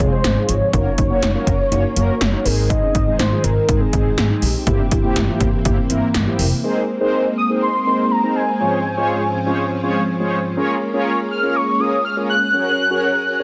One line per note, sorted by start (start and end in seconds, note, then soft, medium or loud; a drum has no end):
0.00 0.10 F1 loud
0.00 0.70 C3 medium
0.00 0.72 F3 medium
0.00 0.18 G#3 medium
0.00 0.72 G#3 medium
0.00 0.18 C4 medium
0.00 0.18 F4 medium
0.00 0.18 G#4 medium
0.00 kick medium
0.00 closed hi-hat medium
0.12 0.50 C5 loud
0.24 0.35 G#1 medium
0.24 0.35 C4 medium
0.24 snare loud
0.24 closed hi-hat medium
0.36 0.55 G#3 medium
0.36 0.55 C4 medium
0.36 0.58 D#4 medium
0.36 0.55 F4 medium
0.36 0.55 G#4 medium
0.49 0.60 G#1 medium
0.49 2.47 C#5 loud
0.49 closed hi-hat medium
0.73 0.84 F#1 loud
0.73 0.92 A#3 medium
0.73 0.92 C#4 medium
0.73 0.84 D#4 loud
0.73 0.92 F#4 medium
0.73 0.92 A#4 medium
0.73 kick loud
0.73 closed hi-hat medium
0.86 0.97 C#4 medium
0.98 1.09 F#1 loud
0.98 1.20 D#4 medium
0.98 kick medium
0.98 closed hi-hat medium
1.10 1.23 A#3 medium
1.10 1.23 C#4 medium
1.10 1.23 F#4 medium
1.10 1.23 C#5 loud
1.23 1.33 F#1 medium
1.23 1.33 D#4 medium
1.23 snare loud
1.23 closed hi-hat medium
1.35 1.54 A#3 medium
1.35 1.54 C#4 medium
1.35 1.57 F4 medium
1.35 1.54 F#4 medium
1.35 1.54 A#4 loud
1.47 1.58 F#1 loud
1.47 kick medium
1.47 closed hi-hat medium
1.72 1.82 F#1 loud
1.72 1.84 A#3 medium
1.72 1.84 C#4 medium
1.72 1.83 D#4 medium
1.72 1.84 F#4 medium
1.72 1.84 C#5 loud
1.72 closed hi-hat medium
1.84 2.06 C#4 medium
1.96 2.07 F#1 loud
1.96 2.15 A#3 medium
1.96 2.15 C#4 medium
1.96 2.15 F#4 medium
1.96 2.15 A#4 loud
1.96 closed hi-hat medium
2.21 2.32 F#1 loud
2.21 2.32 C#4 medium
2.21 snare loud
2.21 closed hi-hat medium
2.33 2.46 A#3 medium
2.33 2.46 C#4 medium
2.33 2.55 D#4 medium
2.33 2.46 F#4 medium
2.33 2.46 A#4 medium
2.45 2.78 G#1 loud
2.45 4.65 D#3 medium
2.45 2.95 G#3 medium
2.45 4.65 G#3 medium
2.45 2.95 C4 medium
2.45 6.60 C4 medium
2.45 2.95 D#4 medium
2.45 2.95 G#4 medium
2.45 2.69 A#4 medium
2.45 open hi-hat medium
2.70 2.81 D#4 loud
2.70 3.16 D#5 loud
2.70 kick loud
2.70 closed hi-hat medium
2.83 2.93 C#4 medium
2.95 3.06 G#1 loud
2.95 3.17 D#4 medium
2.95 kick medium
2.95 closed hi-hat medium
3.07 3.20 G#3 medium
3.07 3.20 C4 medium
3.07 3.20 D#4 medium
3.07 3.20 G#4 medium
3.19 3.30 G#1 medium
3.19 3.30 D#4 medium
3.19 3.45 C5 loud
3.19 snare loud
3.19 closed hi-hat medium
3.32 3.50 G#3 medium
3.32 3.50 C4 medium
3.32 3.50 D#4 medium
3.32 3.54 F4 medium
3.32 3.50 G#4 medium
3.44 3.55 G#1 loud
3.44 3.82 A#4 loud
3.44 closed hi-hat medium
3.69 3.79 G#1 loud
3.69 3.81 G#3 medium
3.69 3.81 C4 medium
3.69 3.80 D#4 medium
3.69 3.81 D#4 medium
3.69 3.81 G#4 medium
3.69 kick loud
3.69 closed hi-hat medium
3.80 4.03 C4 medium
3.80 4.17 G#4 medium
3.93 4.04 G#1 medium
3.93 4.12 G#3 medium
3.93 4.12 C4 medium
3.93 4.12 D#4 medium
3.93 4.12 G#4 medium
3.93 kick medium
3.93 closed hi-hat medium
4.17 4.28 G#1 loud
4.17 4.29 C4 medium
4.17 4.29 G#4 medium
4.17 snare loud
4.17 closed hi-hat medium
4.30 4.49 G#3 medium
4.30 4.49 C4 medium
4.30 4.52 D#4 medium
4.30 4.49 D#4 medium
4.30 4.49 G#4 medium
4.42 4.53 A#1 medium
4.42 6.10 G4 medium
4.42 open hi-hat medium
4.67 4.78 G1 loud
4.67 6.62 E3 medium
4.67 4.86 A#3 medium
4.67 6.62 A#3 medium
4.67 4.86 C4 medium
4.67 4.86 E4 medium
4.67 4.78 E4 medium
4.67 4.86 G4 medium
4.67 kick loud
4.67 closed hi-hat medium
4.79 4.90 D4 medium
4.91 5.02 G1 loud
4.91 5.13 E4 medium
4.91 kick medium
4.91 closed hi-hat medium
5.04 5.16 A#3 medium
5.04 5.16 C4 medium
5.04 5.16 E4 medium
5.04 5.16 G4 loud
5.16 5.27 G1 medium
5.16 5.27 E4 medium
5.16 snare loud
5.16 closed hi-hat medium
5.28 5.47 A#3 medium
5.28 5.47 C4 medium
5.28 5.47 E4 medium
5.28 5.50 F4 medium
5.28 5.47 G4 loud
5.41 5.51 G1 medium
5.41 kick medium
5.41 closed hi-hat medium
5.65 5.76 G1 loud
5.65 5.78 A#3 medium
5.65 5.78 C4 medium
5.65 5.76 E4 medium
5.65 5.78 E4 medium
5.65 5.78 G4 loud
5.65 kick loud
5.65 closed hi-hat medium
5.78 5.99 C4 medium
5.90 6.01 G1 loud
5.90 6.09 A#3 medium
5.90 6.09 C4 medium
5.90 6.09 E4 medium
5.90 6.09 A#4 loud
5.90 closed hi-hat medium
6.14 6.25 G1 loud
6.14 6.25 C4 medium
6.14 snare loud
6.14 closed hi-hat medium
6.27 6.46 A#3 medium
6.27 6.46 C4 medium
6.27 6.49 E4 medium
6.27 6.46 E4 medium
6.27 6.46 G4 loud
6.39 6.50 F1 medium
6.39 open hi-hat medium
6.63 8.58 G#3 medium
6.63 8.58 A#3 medium
6.63 10.53 C4 medium
6.63 6.83 C4 medium
6.63 6.82 D#4 medium
6.63 6.82 G#4 medium
6.63 6.82 A#4 medium
6.63 6.82 C5 loud
7.01 7.26 C4 medium
7.01 7.26 D#4 medium
7.01 7.26 G#4 medium
7.01 7.26 A#4 medium
7.01 7.26 C5 loud
7.38 7.49 D#6 loud
7.50 7.68 C4 medium
7.50 7.68 D#4 medium
7.50 7.68 G#4 medium
7.50 7.68 A#4 medium
7.50 7.68 C5 medium
7.62 8.13 C6 loud
7.87 8.05 C4 medium
7.87 8.05 D#4 medium
7.87 8.05 G#4 medium
7.87 8.05 A#4 medium
7.87 8.05 C5 medium
8.11 8.37 A#5 loud
8.24 8.42 C4 medium
8.24 8.42 D#4 medium
8.24 8.42 G#4 medium
8.24 8.42 A#4 medium
8.24 8.42 C5 medium
8.36 10.32 G#5 medium
8.60 10.55 G#2 medium
8.60 10.55 F3 medium
8.60 8.79 G#3 medium
8.60 10.55 C#4 medium
8.60 8.79 C#4 medium
8.60 8.79 F4 medium
8.60 8.79 G#4 medium
8.60 8.79 C5 medium
8.60 8.79 C#5 medium
8.97 9.22 G#3 medium
8.97 9.22 C#4 medium
8.97 9.22 F4 medium
8.97 9.22 G#4 medium
8.97 9.22 C5 medium
8.97 9.22 C#5 loud
9.46 9.65 G#3 medium
9.46 9.65 C#4 medium
9.46 9.65 F4 medium
9.46 9.65 G#4 medium
9.46 9.65 C5 medium
9.46 9.65 C#5 loud
9.83 10.02 G#3 medium
9.83 10.02 C#4 medium
9.83 10.02 F4 medium
9.83 10.02 G#4 medium
9.83 10.02 C5 medium
9.83 10.02 C#5 loud
10.20 10.39 G#3 medium
10.20 10.39 C#4 medium
10.20 10.39 F4 medium
10.20 10.39 G#4 medium
10.20 10.39 C5 medium
10.20 10.39 C#5 loud
10.57 12.52 G#3 medium
10.57 12.52 A#3 medium
10.57 10.76 C#4 medium
10.57 13.43 C#4 medium
10.57 10.76 F4 medium
10.57 10.76 G#4 medium
10.57 10.76 A#4 medium
10.57 10.76 C#5 loud
10.94 11.19 C#4 loud
10.94 11.19 F4 medium
10.94 11.19 G#4 medium
10.94 11.19 A#4 medium
10.94 11.19 C#5 loud
11.31 11.57 F6 loud
11.43 11.62 C#4 medium
11.43 11.62 F4 medium
11.43 11.62 G#4 medium
11.43 11.62 A#4 medium
11.43 11.62 C#5 medium
11.56 11.82 C#6 loud
11.80 11.99 C#4 medium
11.80 11.99 F4 medium
11.80 11.99 G#4 medium
11.80 11.99 A#4 medium
11.80 11.99 C#5 medium
11.80 12.04 D#6 loud
12.05 12.16 F6 loud
12.17 12.36 C#4 medium
12.17 12.36 F4 medium
12.17 12.36 G#4 medium
12.17 12.36 A#4 medium
12.17 12.36 C#5 medium
12.30 13.43 F#6 loud
12.54 13.43 F#3 medium
12.54 12.72 C#4 medium
12.54 12.72 F#4 medium
12.54 12.72 G#4 medium
12.54 13.43 G#4 medium
12.54 12.72 A#4 medium
12.54 13.43 A#4 medium
12.54 12.72 C#5 medium
12.90 13.15 C#4 medium
12.90 13.15 F#4 medium
12.90 13.16 G#4 medium
12.90 13.16 A#4 medium
12.90 13.16 C#5 loud
13.40 13.43 C#4 medium
13.40 13.43 F#4 medium
13.40 13.43 G#4 medium
13.40 13.43 A#4 medium
13.40 13.43 C#5 loud